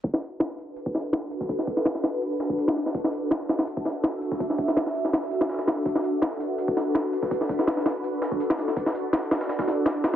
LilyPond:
<<
  \new Staff \with { instrumentName = "Ambient pad" } { \time 4/4 \key b \minor \tempo 4 = 165 << { b'1~ | b'1 | e''1~ | e''1 |
b'1~ | b'1 | d''1 | } \\ { <d' fis' a'>1~ | <d' fis' a'>1~ | <d' fis' a'>1~ | <d' fis' a'>1~ |
<d' fis' a'>1~ | <d' fis' a'>1~ | <d' fis' a'>1 | } >> }
  \new DrumStaff \with { instrumentName = "Drums" } \drummode { \time 4/4 <hh hho bd>16 sn16 <hh hho>8 <hh hho sn>16 sn16 <hh hho>8 <hh hho>16 <hh bd>16 <hh hho sn>8 <hh hho sn>8 <hh hho>16 <bd sn>16 | <hh hho bd>16 <hh sn>16 <hh hho bd>16 sn16 <hh hho sn>16 sn16 <hh hho sn>16 hh16 <hh hho>16 hh16 <hh hho sn>16 <hh bd>16 <hh hho>16 <hh sn>16 <hh hho sn>16 sn16 | <hh hho bd>16 sn16 <hh hho>8 <hh hho sn>16 <hh sn>16 <hh hho sn>16 <hho sn>16 <hh hho>16 <hh bd>16 <hh hho sn>8 <hh hho sn>8 <hh hho>16 <bd sn>16 | <hh hho bd>16 <hh sn>16 <hh hho bd>16 sn16 <hh hho sn>16 sn16 <hh hho>16 sn16 <hh hho sn>16 <hh sn>16 <hh hho>16 <hho sn>16 <hh sn>32 <hh sn>32 <hh hho sn>16 <hh hho sn>16 sn16 |
<hh hho bd>16 sn16 <hh hho>8 <hh hho sn>16 <hh sn>16 <hh hho>8 <hh hho>16 <hh bd>16 <hh hho sn>8 <hh hho sn>8 <hh hho>16 <bd sn>16 | <hh hho bd>16 <hh sn>16 <hh hho bd>16 sn16 <hh hho sn>16 sn16 <hh hho sn>16 hh16 <hh hho>16 hh16 <hh hho sn>16 <hh bd>16 <hh hho>16 <hh sn>16 <hh hho sn>16 sn16 | <hh hho bd>16 sn16 <hh hho>8 <hh hho sn>16 <hh sn>16 <hh hho sn>16 <hh sn>16 <hh hho sn>16 <hh bd sn>16 <hh hho sn>8 <hh hho sn>8 <hh hho sn>8 | }
>>